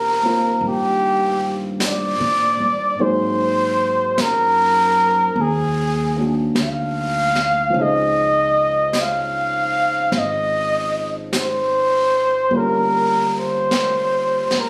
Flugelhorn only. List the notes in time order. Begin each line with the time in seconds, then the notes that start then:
Already playing: A#4
0.68 G4
1.86 D5
3.01 C5
4.21 A#4
5.41 G#4
6.61 F5
7.81 D#5
9.01 F5
10.18 D#5
11.38 C5
12.57 A#4
13.39 C5
14.60 A#4